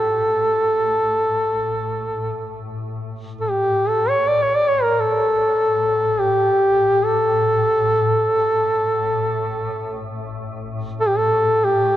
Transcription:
0.00 3.57 A2 soft
0.00 2.65 A4 medium
3.41 3.52 A4 soft
3.50 3.90 G4 medium
3.58 11.97 A2 soft
3.89 4.11 A4 medium
4.09 4.29 C#5 medium
4.27 4.44 D5 medium
4.42 4.57 C#5 medium
4.55 4.70 D5 medium
4.68 4.84 C#5 medium
4.83 5.02 A#4 medium
5.00 6.22 A4 medium
6.20 7.06 G4 medium
7.05 10.06 A4 medium
11.01 11.10 A4 medium
11.08 11.19 G4 medium
11.18 11.66 A4 medium
11.65 11.97 G4 medium

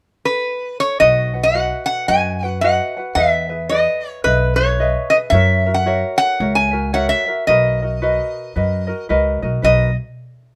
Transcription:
0.25 0.80 B4 medium
0.80 0.99 C#5 medium
1.00 1.70 B1 medium
1.00 1.33 F#4 medium
1.00 1.33 B4 medium
1.00 1.43 D#5 medium
1.00 1.33 D#5 medium
1.00 1.32 F#5 medium
1.34 1.53 F#4 soft
1.34 1.53 B4 soft
1.34 1.54 F#5 soft
1.43 1.84 F#5 medium
1.54 2.08 F#4 medium
1.54 2.09 B4 medium
1.54 2.07 D#5 medium
1.54 2.09 F#5 medium
1.86 2.08 F#5 medium
2.08 2.78 F#2 medium
2.08 2.41 F#4 medium
2.08 2.42 B4 soft
2.08 2.41 D#5 medium
2.08 2.42 F#5 medium
2.08 2.58 G#5 medium
2.43 2.62 F#4 soft
2.43 2.63 B4 soft
2.43 2.63 F#5 soft
2.61 2.96 F#4 medium
2.61 2.96 B4 medium
2.61 2.95 D#5 medium
2.61 3.15 F#5 medium
2.61 2.96 F#5 medium
2.97 3.16 F#4 soft
2.97 3.16 B4 soft
2.97 3.17 F#5 soft
3.15 3.86 E2 medium
3.15 3.49 G#4 medium
3.15 3.48 B4 medium
3.15 3.49 D#5 medium
3.15 3.69 E5 medium
3.15 3.48 E5 medium
3.49 3.70 G#4 soft
3.49 3.70 B4 soft
3.49 3.70 E5 soft
3.69 4.24 G#4 medium
3.69 4.24 B4 medium
3.69 4.20 D#5 medium
3.69 4.23 D#5 medium
4.24 4.94 B1 medium
4.24 4.57 G#4 medium
4.24 4.56 B4 medium
4.24 4.57 B4 medium
4.24 4.57 D#5 soft
4.24 4.57 E5 medium
4.56 4.79 G#4 soft
4.56 4.78 B4 soft
4.56 5.12 C#5 medium
4.56 4.78 E5 medium
4.80 5.12 G#4 medium
4.80 5.11 B4 medium
4.80 5.11 D#5 medium
4.80 5.10 E5 medium
5.10 5.33 G#4 soft
5.10 5.32 B4 soft
5.10 5.16 D#5 medium
5.10 5.32 E5 soft
5.30 6.02 F#2 medium
5.30 5.65 F#4 medium
5.30 5.65 C#5 medium
5.30 5.74 E5 medium
5.34 5.65 A#4 medium
5.34 5.64 E5 medium
5.66 5.85 F#4 soft
5.66 5.85 A#4 soft
5.66 5.86 E5 soft
5.74 6.17 F#5 medium
5.86 6.41 F#4 medium
5.86 6.41 A#4 medium
5.86 6.39 C#5 medium
5.86 6.40 E5 medium
6.18 6.55 F#5 medium
6.40 7.10 C#2 medium
6.40 6.72 F#4 soft
6.40 6.72 A#4 medium
6.40 6.73 C#5 soft
6.40 6.70 E5 medium
6.55 6.93 G#5 medium
6.71 6.92 F#4 soft
6.71 6.93 A#4 soft
6.71 6.93 E5 soft
6.93 7.26 F#4 medium
6.93 7.26 A#4 medium
6.93 7.26 C#5 medium
6.93 7.25 E5 medium
6.93 7.09 F#5 medium
7.09 7.47 E5 medium
7.26 7.48 F#4 soft
7.26 7.48 A#4 soft
7.26 7.47 E5 soft
7.47 8.18 B1 medium
7.47 7.81 F#4 medium
7.47 7.81 A#4 medium
7.47 7.81 B4 medium
7.47 9.05 D#5 medium
7.47 7.81 D#5 medium
7.82 8.01 F#4 soft
7.82 8.02 A#4 soft
7.82 8.02 D#5 soft
8.02 8.56 F#4 medium
8.02 8.56 A#4 medium
8.02 8.55 B4 medium
8.02 8.57 D#5 medium
8.56 8.91 F#2 medium
8.56 8.88 F#4 medium
8.56 8.87 A#4 medium
8.56 8.88 B4 medium
8.56 8.86 D#5 medium
8.87 9.08 F#4 soft
8.87 9.09 A#4 soft
8.87 9.08 D#5 soft
9.09 9.39 C#2 medium
9.09 9.42 F#4 medium
9.09 9.42 A#4 medium
9.09 9.42 B4 medium
9.09 9.41 D#5 medium
9.42 9.61 B1 medium
9.42 9.63 F#4 soft
9.42 9.63 A#4 soft
9.42 9.63 D#5 soft
9.62 9.94 B1 medium
9.62 9.90 F#4 medium
9.62 9.90 A#4 medium
9.62 9.89 B4 medium
9.62 9.94 D#5 medium
9.62 9.90 D#5 medium

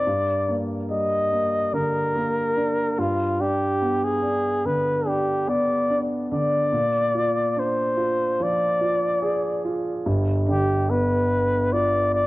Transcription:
0.00 0.60 D5 medium
0.07 2.94 G2 medium
0.49 1.30 A#3 soft
0.90 2.52 G3 soft
0.90 1.76 D#5 medium
1.32 2.14 A#3 soft
1.73 2.94 D3 soft
1.73 3.01 A#4 medium
2.15 2.96 A#3 medium
2.56 2.97 D4 medium
2.98 6.27 G2 medium
2.98 3.43 F4 medium
3.40 4.21 D4 medium
3.40 4.06 G4 medium
3.81 5.44 B3 soft
4.04 4.67 G#4 medium
4.22 5.04 D4 medium
4.65 6.27 D3 soft
4.65 5.09 B4 medium
5.06 5.88 D4 medium
5.06 5.51 G4 medium
5.48 6.69 B3 medium
5.48 6.05 D5 medium
5.89 6.70 D4 medium
6.31 6.72 D3 medium
6.31 7.61 D5 medium
6.72 10.02 A#2 medium
7.14 7.95 F4 soft
7.56 9.19 D4 medium
7.56 8.44 C5 medium
7.97 8.79 F4 soft
8.40 10.02 F3 medium
8.40 9.66 D5 medium
8.81 9.63 F4 medium
9.22 10.03 G#4 medium
9.65 10.05 F4 medium
10.06 12.27 G1 medium
10.06 12.27 G2 medium
10.47 12.10 D3 soft
10.47 10.92 G4 medium
10.89 12.27 B3 medium
10.89 11.74 B4 medium
11.73 12.27 F4 soft
11.73 12.13 D5 medium
12.14 12.27 D5 loud

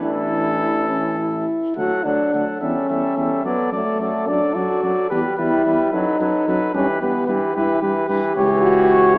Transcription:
0.00 1.45 A1 soft
0.00 1.48 E3 soft
0.00 0.88 D4 soft
0.00 1.31 E4 soft
0.00 1.46 A4 medium
0.89 1.16 C#4 soft
1.18 1.76 E4 soft
1.76 1.90 D2 soft
1.76 2.04 F#3 soft
1.76 2.06 F#4 medium
1.76 2.04 A4 soft
1.76 2.05 F#5 soft
2.04 2.18 D2 soft
2.04 2.33 F#3 soft
2.04 2.44 D4 medium
2.04 2.32 A4 soft
2.04 2.33 F#5 soft
2.33 2.46 D2 soft
2.33 2.61 F#3 soft
2.33 2.60 A4 soft
2.33 2.60 F#5 soft
2.60 2.74 E2 soft
2.60 2.89 G3 soft
2.60 3.43 C#4 medium
2.60 2.88 A4 soft
2.60 2.89 E5 soft
2.89 3.02 E2 soft
2.89 3.16 G3 soft
2.89 3.16 A4 soft
2.89 3.17 E5 soft
3.16 3.29 E2 soft
3.16 3.44 G3 soft
3.16 3.43 A4 soft
3.16 3.44 E5 soft
3.44 3.57 F#2 soft
3.44 3.72 F#3 soft
3.44 3.72 B3 medium
3.44 3.71 A4 soft
3.44 3.72 D5 soft
3.72 3.84 F#2 soft
3.72 4.00 F#3 soft
3.72 4.30 A3 medium
3.72 4.00 A4 soft
3.72 4.00 D5 soft
3.99 4.12 F#2 soft
3.99 4.28 F#3 soft
3.99 4.29 A4 soft
3.99 4.27 D5 soft
4.27 4.40 F#2 soft
4.27 4.55 F#3 soft
4.27 4.57 D4 medium
4.27 4.57 A4 soft
4.27 4.54 D5 soft
4.55 4.68 F#2 soft
4.55 4.83 F#3 soft
4.55 5.11 F#4 medium
4.55 4.82 D5 soft
4.59 4.85 A4 soft
4.83 4.96 F#2 soft
4.83 5.10 F#3 soft
4.83 5.12 A4 soft
4.83 5.09 D5 soft
5.10 5.23 E2 soft
5.10 5.37 G3 soft
5.10 5.24 G4 medium
5.10 5.38 G4 soft
5.10 5.36 B4 soft
5.36 5.51 E2 soft
5.36 5.65 G3 soft
5.36 5.93 E4 medium
5.36 5.66 G4 soft
5.36 5.64 B4 soft
5.65 5.78 E2 soft
5.65 5.92 G3 soft
5.65 5.92 G4 soft
5.65 5.90 B4 soft
5.91 6.05 F#2 soft
5.91 6.19 F#3 soft
5.91 6.73 D#4 medium
5.91 6.19 A4 soft
5.91 6.19 B4 soft
6.19 6.33 F#2 soft
6.19 6.47 F#3 soft
6.19 6.46 A4 soft
6.19 6.47 B4 soft
6.47 6.60 F#2 medium
6.47 6.74 F#3 soft
6.47 6.73 A4 soft
6.47 6.74 B4 soft
6.74 6.87 G2 medium
6.74 7.01 E3 soft
6.74 6.87 C#4 medium
6.74 7.00 G4 soft
6.74 7.01 B4 soft
7.01 7.14 G2 soft
7.01 7.28 E3 soft
7.01 7.35 B3 medium
7.01 7.27 G4 soft
7.01 7.26 B4 soft
7.27 7.40 G2 soft
7.27 7.54 E3 soft
7.27 7.53 G4 soft
7.27 7.54 B4 soft
7.54 7.68 G2 medium
7.54 7.81 E3 soft
7.54 7.80 E4 medium
7.54 7.80 G4 soft
7.54 7.81 B4 soft
7.81 7.94 G2 soft
7.81 8.08 E3 soft
7.81 8.06 G4 soft
7.81 8.08 B4 soft
8.06 8.21 G2 soft
8.06 8.35 E3 soft
8.06 8.34 G4 soft
8.06 8.35 B4 soft
8.35 9.18 C#2 medium
8.35 9.18 E3 medium
8.35 8.60 G4 medium
8.35 9.17 G4 medium
8.35 9.18 C#5 medium
8.62 9.15 F#4 medium

